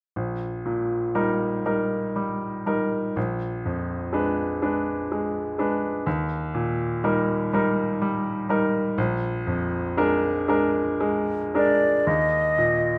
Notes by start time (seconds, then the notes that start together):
0.16 A#1
0.65 A#2
1.15 G3 D#4 A#4
1.66 G3 D#4 A#4
2.16 G3
2.66 G3 D#4 A#4
3.16 A#1
3.66 F2
4.13 G#3 D4 B4
4.62 G#3 D4 B4
5.12 G#3
5.59 G#3 D4 B4
6.07 D#2
6.55 A#2
7.04 G3 D#4 A#4
7.53 G3 D#4 A#4
8.02 G3
8.49 G3 D#4 A#4
8.98 A#1
9.47 F2
9.97 G#3 D4 A#4
10.48 G#3 D4 A#4
11.01 G#3
11.55 G#3 D4 A#4 D5
12.07 D#2 D#5
12.58 A#2